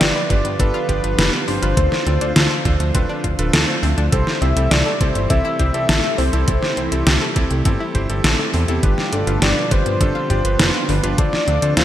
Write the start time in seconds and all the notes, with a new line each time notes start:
Already playing: D3 F3 G3 B3 F4
0.01 G1 D4 F4 G4 B4 D5, snare, closed hi-hat
0.15 B4
0.30 G1 D4 F4 G4 B4 D5, kick, closed hi-hat
0.45 G2 B3, closed hi-hat
0.59 G1 D4 F4 G4 A4 B4, kick, closed hi-hat
0.74 F4
0.89 G1 D4 F4 G4 D5, kick, closed hi-hat
1.04 G1 D4 F4 G4 B4, closed hi-hat
1.18 F1 D4 F4 G4 B4, snare, closed hi-hat
1.33 B3
1.48 G1 D4 F4 G4 B4 C5, open hi-hat
1.62 G1 D4 F4 G4 B4, closed hi-hat
1.77 D2 D3 F3 A3 C4 D4 F4 A4 C5, kick, closed hi-hat
1.92 snare
2.06 D2 C4 D4 F4 A4 D5, closed hi-hat
2.21 D2 D4 F4 A4 C5, closed hi-hat
2.36 D2 D4 F4 A4 C5, snare, closed hi-hat
2.51 A4
2.65 D2 D4 F4 A4 C5, kick, closed hi-hat
2.80 D2 A3, closed hi-hat
2.95 D1 C4 D4 F4 A4 B4, kick, closed hi-hat
3.09 D4
3.24 D1 F4, kick, closed hi-hat
3.39 D1 D4 F4 A4 B4, closed hi-hat
3.53 D2 A4, snare, closed hi-hat
3.68 A3 D4 F4 A4 C5
3.83 D2 C4 D4 F4 A4 E5, open hi-hat
3.98 D2 D4, closed hi-hat
4.12 C2 C3 E3 G3 A3 C4 E4 G4 A4 C5, kick, closed hi-hat
4.27 snare
4.41 C2 C4 E4 G4 C5 E5, closed hi-hat
4.56 C2 C4 E4 G4 A4, closed hi-hat
4.71 C2 C4 E4 G4 A4 D5, snare, closed hi-hat
4.86 A4
5.00 C2 C4 E4 G4 A4 C5, kick, closed hi-hat
5.15 G1 A3, closed hi-hat
5.30 C2 C4 E4 G4 A4 E5, kick, closed hi-hat
5.45 E4
5.59 C2 C4 E4 G4 C5, kick, closed hi-hat
5.74 C2 C4 E4 G4 A4, closed hi-hat
5.89 A1 C4 E4 G4 A4, snare, closed hi-hat
6.04 A3
6.18 C2 C4 E4 G4 A4 C5, open hi-hat
6.33 C2 C4 E4 G4 A4, closed hi-hat
6.48 C2 A3 C4 E4 G4 A4, kick, closed hi-hat
6.63 snare
6.77 C2 C4 E4 G4 C5, closed hi-hat
6.92 C2 C4 E4 G4 A4, closed hi-hat
7.06 C2 C4 E4 G4 A4, snare, closed hi-hat
7.21 A4
7.36 C2 C4 E4 G4 A4, kick, closed hi-hat
7.51 C2 A3, closed hi-hat
7.65 G1 C4 E4 G4 A4, kick, closed hi-hat
7.80 E4
7.95 G1 C4 E4 G4 C5, kick, closed hi-hat
8.09 G1 C4 E4 G4 A4, closed hi-hat
8.24 A1 C4 E4 G4 A4, snare, closed hi-hat
8.39 A3
8.54 E2 C4 E4 G4 A4, open hi-hat
8.68 E2 C4 E4 G4 A4, closed hi-hat
8.83 G1 B2 D3 F3 B3 D4 F4 G4 B4, kick, closed hi-hat
8.98 snare
9.12 G1 D4 F4 G4 A4 D5, closed hi-hat
9.27 G1 D4 F4 G4 B4, closed hi-hat
9.42 G1 D4 F4 G4 B4 D5, snare, closed hi-hat
9.57 B4
9.71 G1 D4 F4 G4 B4 C5, kick, closed hi-hat
9.86 G2 B3, closed hi-hat
10.01 G1 D4 F4 G4 A4, kick, closed hi-hat
10.15 F4
10.30 G1 D4 F4 G4 D5, kick, closed hi-hat
10.45 G1 D4 F4 G4 B4, closed hi-hat
10.59 F1 D4 F4 G4 B4, snare, closed hi-hat
10.74 B3
10.89 G1 D4 F4 G4 B4, open hi-hat
11.03 G1 D4 F4 G4 B4, closed hi-hat
11.18 D2 A3 C4 D4 F4 A4 C5 D5, kick, closed hi-hat
11.33 snare
11.48 D2 C4 D4 F4 A4 D5, closed hi-hat
11.62 D2 D4 F4 A4 C5, closed hi-hat
11.77 D2 D4 F4 A4 C5, snare, closed hi-hat